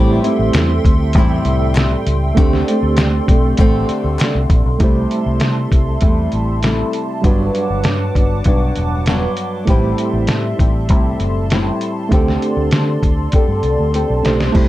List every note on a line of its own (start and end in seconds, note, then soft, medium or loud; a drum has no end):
0.00 0.18 A1 loud
0.00 0.24 A2 medium
0.00 0.24 G3 loud
0.00 2.31 A3 medium
0.00 0.24 C4 medium
0.00 2.32 C4 medium
0.00 0.23 E4 medium
0.00 2.33 E4 medium
0.00 2.33 G4 medium
0.00 2.35 A4 medium
0.00 2.34 C5 medium
0.00 2.35 E5 medium
0.00 4.77 G5 medium
0.00 2.35 C6 loud
0.24 1.16 G3 soft
0.24 1.17 C4 medium
0.24 1.15 E4 medium
0.24 closed hi-hat medium
0.39 0.51 A1 medium
0.53 0.78 E2 loud
0.53 snare loud
0.53 clap medium
0.53 closed hi-hat medium
0.85 1.15 D2 medium
0.85 kick medium
0.85 closed hi-hat medium
1.13 1.39 E2 loud
1.13 2.37 A2 medium
1.13 2.37 G3 medium
1.13 kick loud
1.13 closed hi-hat medium
1.18 2.37 C4 medium
1.18 2.38 E4 loud
1.45 1.94 C2 loud
1.45 closed hi-hat medium
1.75 snare loud
1.75 clap medium
1.75 closed hi-hat medium
2.07 2.31 C#2 medium
2.07 closed hi-hat medium
2.35 2.61 D2 loud
2.35 2.67 D3 medium
2.35 4.75 A3 medium
2.35 2.67 A3 medium
2.35 4.76 C4 medium
2.35 2.67 C4 loud
2.35 4.77 D4 medium
2.35 2.66 G4 medium
2.35 4.77 G4 medium
2.35 4.79 A4 medium
2.35 4.78 D5 medium
2.35 4.78 C6 loud
2.35 kick loud
2.35 closed hi-hat loud
2.40 4.78 C5 medium
2.53 snare soft
2.67 3.30 A3 soft
2.67 3.29 C4 medium
2.67 3.27 G4 medium
2.67 closed hi-hat medium
2.83 3.19 D2 loud
2.97 snare loud
2.97 clap medium
2.97 closed hi-hat medium
3.28 3.53 B1 medium
3.28 3.58 A3 medium
3.28 3.59 C4 medium
3.28 3.58 G4 medium
3.28 kick medium
3.28 closed hi-hat medium
3.57 3.83 A1 medium
3.57 4.79 D3 medium
3.57 4.79 A3 medium
3.57 4.81 C4 loud
3.57 4.82 G4 loud
3.57 kick medium
3.57 closed hi-hat medium
3.89 muted fingered electric bass stroke medium
3.89 closed hi-hat medium
4.04 4.16 D2 medium
4.19 snare loud
4.19 clap medium
4.19 closed hi-hat medium
4.35 4.47 C2 medium
4.50 4.62 A#1 medium
4.50 kick medium
4.50 closed hi-hat medium
4.66 4.78 B1 medium
4.79 5.05 C2 medium
4.79 6.00 C3 medium
4.79 6.02 G3 medium
4.79 7.19 A3 medium
4.79 6.02 A3 medium
4.79 7.20 E4 medium
4.79 6.02 E4 medium
4.79 7.21 G4 medium
4.79 7.22 A4 medium
4.79 7.22 E5 medium
4.79 9.64 A5 medium
4.79 7.22 C6 medium
4.79 kick loud
4.79 closed hi-hat medium
4.84 7.22 C5 medium
5.11 closed hi-hat medium
5.26 5.38 C2 loud
5.40 5.66 C3 medium
5.40 snare loud
5.40 closed hi-hat medium
5.72 5.96 C2 medium
5.72 kick medium
5.72 closed hi-hat medium
6.01 6.27 E2 medium
6.01 6.61 C3 medium
6.01 6.62 G3 medium
6.01 6.62 A3 medium
6.01 6.63 E4 medium
6.01 kick medium
6.01 closed hi-hat medium
6.32 6.82 A1 medium
6.32 closed hi-hat soft
6.62 7.23 C3 medium
6.62 7.24 G3 medium
6.62 7.24 A3 medium
6.62 7.24 E4 medium
6.62 snare loud
6.62 closed hi-hat medium
6.93 closed hi-hat medium
7.22 7.48 G1 medium
7.22 8.15 G2 medium
7.22 8.15 F#3 medium
7.22 9.63 G3 medium
7.22 8.16 B3 medium
7.22 9.63 D4 medium
7.22 8.14 D4 medium
7.22 9.64 F#4 medium
7.22 9.66 B4 medium
7.22 9.66 F#5 medium
7.22 9.66 D6 medium
7.22 kick loud
7.22 closed hi-hat medium
7.27 9.65 B4 medium
7.55 closed hi-hat medium
7.70 7.82 G1 medium
7.84 8.10 G2 medium
7.84 snare loud
7.84 closed hi-hat medium
8.15 8.40 G1 medium
8.15 8.45 F#3 soft
8.15 8.46 B3 medium
8.15 8.46 D4 soft
8.15 kick medium
8.15 closed hi-hat medium
8.44 8.70 B1 medium
8.44 9.06 G2 medium
8.44 9.07 F#3 medium
8.44 9.07 B3 medium
8.44 9.08 D4 medium
8.44 kick medium
8.44 closed hi-hat medium
8.76 9.25 E1 medium
8.76 closed hi-hat medium
9.06 9.68 G2 medium
9.06 9.68 F#3 medium
9.06 9.69 B3 medium
9.06 9.69 D4 medium
9.06 snare loud
9.06 closed hi-hat medium
9.37 closed hi-hat medium
9.65 9.92 A1 medium
9.65 10.59 A2 medium
9.65 10.60 G3 medium
9.65 12.06 A3 medium
9.65 10.60 C4 medium
9.65 12.07 E4 medium
9.65 12.08 G4 medium
9.65 kick loud
9.65 closed hi-hat medium
9.70 10.58 E4 loud
9.70 14.68 A4 medium
9.70 12.09 C5 medium
9.70 12.10 E5 medium
9.70 14.68 A5 medium
9.70 14.68 C6 medium
9.98 closed hi-hat medium
10.13 10.26 A1 medium
10.27 10.53 A2 medium
10.27 snare loud
10.27 closed hi-hat medium
10.59 10.90 A1 medium
10.59 10.89 G3 soft
10.59 10.90 C4 medium
10.59 10.89 E4 medium
10.59 kick medium
10.59 closed hi-hat medium
10.89 11.14 C2 loud
10.89 11.49 A2 medium
10.89 11.51 G3 medium
10.89 11.52 C4 medium
10.89 11.51 E4 medium
10.89 kick medium
10.89 closed hi-hat medium
11.20 11.69 F#1 medium
11.20 closed hi-hat soft
11.50 12.11 A2 medium
11.50 12.17 G3 medium
11.50 12.12 C4 medium
11.50 12.12 E4 medium
11.50 snare loud
11.50 closed hi-hat medium
11.81 closed hi-hat medium
12.09 12.36 D2 loud
12.09 13.32 D3 medium
12.09 14.19 A3 medium
12.09 13.33 C4 medium
12.09 14.20 D4 medium
12.09 14.21 G4 medium
12.09 14.53 D5 medium
12.09 kick loud
12.09 closed hi-hat medium
12.13 13.34 G4 medium
12.13 13.35 A4 medium
12.13 14.22 C5 medium
12.28 snare soft
12.42 closed hi-hat medium
12.57 12.69 D2 medium
12.71 12.97 D3 medium
12.71 snare loud
12.71 closed hi-hat medium
13.03 13.27 D2 medium
13.03 kick medium
13.03 closed hi-hat medium
13.32 13.92 D3 medium
13.32 13.93 C4 medium
13.32 13.94 G4 medium
13.32 13.95 A4 medium
13.32 kick medium
13.32 closed hi-hat medium
13.48 13.60 G2 medium
13.63 13.75 C2 medium
13.63 closed hi-hat soft
13.79 14.03 D2 medium
13.93 14.54 D3 medium
13.93 14.55 C4 medium
13.93 14.55 G4 medium
13.93 14.58 A4 medium
13.93 closed hi-hat medium
14.10 14.22 B1 medium
14.23 14.49 B1 medium
14.23 14.51 A3 medium
14.23 14.54 D4 soft
14.23 14.54 G4 soft
14.23 14.55 C5 medium
14.23 snare medium
14.23 closed hi-hat medium
14.40 snare medium
14.52 14.68 C2 medium
14.52 14.68 C3 medium
14.52 14.68 G3 medium
14.52 14.68 A3 medium
14.52 14.68 E4 medium
14.52 14.68 G4 medium
14.52 14.68 E5 medium
14.52 kick loud
14.52 crash medium
14.57 14.68 C5 medium